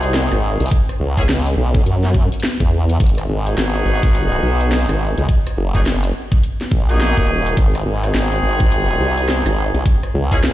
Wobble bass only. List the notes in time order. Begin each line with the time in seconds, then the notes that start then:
Already playing: C2
0.32 G#1
0.60 C2
1.00 C#2
1.29 C#2
1.57 B1
1.86 F#2
2.60 E2
3.00 G#1
3.29 G#1
3.57 G#1
3.86 G#1
4.43 B1
4.89 G#1
5.18 C#2
5.57 F#1
5.86 F#1
6.71 A#1
7.17 D#1
7.57 G#1
7.86 G#1
8.14 G#1
8.43 G#1
9.00 C2
9.46 G#1
9.74 C2
10.14 C#2
10.43 C#2